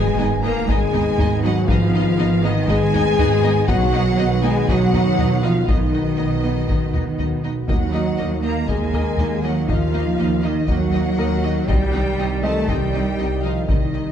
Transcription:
Already playing: double bass section G#1, ambient pad D#3 D#4 G#4 B4, trombone section D#3 B3, cello section G#3, french horn section G#4, violin section G#5, impact
0.18 double bass section G#1, viola section B3 D#4, violin section D#5, felt piano G#5
0.43 cello section A#3, viola section B3 D#4, french horn section A#4, violin section D#5 A#5
0.68 double bass section G#1, cello section G#3, viola section B3 D#4, french horn section G#4, violin section D#5 G#5, taiko
0.93 viola section B3 D#4, violin section D#5, taiko low
1.17 double bass section G#1, viola section B3 D#4, violin section D#5, taiko low
1.43 cello section F#3, viola section B3 D#4, french horn section F#4, violin section D#5 F#5
1.67 double bass section G#1, cello section F3, viola section B3 D#4, french horn section F4, violin section D#5 F5, taiko
1.93 viola section B3 D#4, violin section D#5
2.18 double bass section G#1, viola section B3 D#4, violin section D#5
2.43 cello section D#3, viola section B3 D#4, french horn section D#4, violin section D#5
2.68 double bass section G#1, cello section G#3, viola section B3 D#4, french horn section G#4, violin section D#5 G#5, taiko
2.93 viola section B3 D#4, violin section D#5, taiko low
3.18 double bass section G#1, viola section B3 D#4, violin section D#5, taiko low
3.43 viola section B3 D#4, violin section D#5
3.68 double bass section B1, ambient pad D#3 D#4 F#4 B4, trombone section D#3 B3, cello section F#3, viola section B3 D#4, french horn section F#4, violin section D#5 F#5, felt piano F#5, taiko
3.92 viola section B3 D#4, violin section D#5
4.18 double bass section B1, viola section B3 D#4, violin section D#5
4.43 cello section G#3, viola section B3 D#4, french horn section G#4, violin section D#5 G#5
4.68 double bass section B1, cello section F#3, viola section B3 D#4, french horn section F#4, violin section D#5 F#5, taiko
4.93 viola section B3 D#4, violin section D#5, taiko low
5.18 double bass section B1, viola section B3 D#4, violin section D#5, taiko low
5.42 cello section F3, viola section B3 D#4, french horn section F4, violin section D#5 F5
5.68 double bass section B1, cello section D#3, viola section B3 D#4, french horn section D#4, violin section D#5, taiko
5.93 viola section B3 D#4, violin section D#5
6.17 double bass section B1, viola section B3 D#4, violin section D#5
6.43 viola section B3 D#4, violin section D#5
6.68 double bass section B1, viola section B3 D#4, violin section D#5, taiko
6.93 viola section B3 D#4, violin section D#5, taiko low
7.18 double bass section B1, viola section B3 D#4, violin section D#5, taiko low
7.43 viola section B3 D#4, violin section D#5
7.68 double bass section D#2, ambient pad D#3 D#4 A#4 D#5, trombone section D#3 A#3, cello section F#3, viola section A#3 D#4, french horn section F#4, violin section D#5 F#5, taiko
7.93 viola section A#3 D#4, felt piano D#4 D#5, violin section D#5
8.18 double bass section D#2, viola section A#3 D#4, violin section D#5
8.43 cello section A#3, viola section A#3 D#4, french horn section A#4, violin section D#5 A#5
8.67 double bass section D#2, cello section G#3, viola section A#3 D#4, french horn section G#4, violin section D#5 G#5, taiko
8.93 viola section A#3 D#4, felt piano A#3 A#4, violin section D#5, taiko low
9.18 double bass section D#2, viola section A#3 D#4, violin section D#5, taiko low
9.42 cello section F#3, viola section A#3 D#4, french horn section F#4, violin section D#5 F#5
9.68 double bass section D#2, cello section F3, viola section A#3 D#4, french horn section F4, violin section D#5 F5, taiko
9.93 viola section A#3 D#4, violin section D#5
10.18 double bass section D#2, viola section A#3 D#4, violin section D#5
10.43 cello section D#3, viola section A#3 D#4, french horn section D#4, violin section D#5
10.67 double bass section D#2, cello section F#3, viola section A#3 D#4, french horn section F#4, violin section D#5 F#5, taiko
10.92 viola section A#3 D#4, violin section D#5
11.17 double bass section D#2, viola section A#3 D#4, felt piano A#4, violin section D#5
11.43 viola section A#3 D#4, violin section D#5
11.68 double bass section C2, trombone section D#3 G3, ambient pad D#3 D#4 G4 D#5, cello section G3, viola section C4 D#4, french horn section G4, violin section D#5 G5, taiko
11.93 viola section C4 D#4, violin section D#5
12.18 double bass section C2, viola section C4 D#4, violin section D#5
12.43 cello section A3, viola section C4 D#4, felt piano D#4 D#5, french horn section A4, violin section D#5 A5
12.68 double bass section C2, cello section G3, viola section C4 D#4, french horn section G4, violin section D#5 G5, taiko
12.94 viola section C4 D#4, violin section D#5
13.18 double bass section C2, viola section C4 D#4, violin section D#5
13.43 cello section F3, viola section C4 D#4, french horn section F4, violin section D#5 F5
13.68 double bass section C2, cello section D#3, viola section C4 D#4, french horn section D#4, violin section D#5, taiko
13.93 viola section C4 D#4, violin section D#5

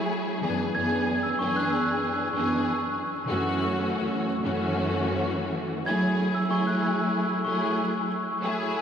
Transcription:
Already playing: string section F#3 A3 E4 G#4
0.41 string section F#2 E3 B3 D4 G#4
0.73 string section F#2 E3 B3 D4 G#4, glockenspiel G#6
1.23 glockenspiel E6
1.39 string section F#2 E3 B3 D4 G#4, glockenspiel C#6
1.56 glockenspiel F#6
1.70 glockenspiel E6
2.33 string section F#2 E3 B3 D4 G#4, glockenspiel C#6
3.26 string section F#2 E3 A3 C#4 F#4
4.42 string section F#2 E3 A3 C#4 F#4
5.85 string section F#3 A3 E4 G#4, glockenspiel G#6
6.35 glockenspiel E6
6.47 string section F#3 A3 E4 G#4, glockenspiel C#6
6.67 glockenspiel F#6
6.82 glockenspiel E6
7.44 string section F#3 A3 E4 G#4, glockenspiel C#6
8.41 string section F#3 A3 E4 G#4

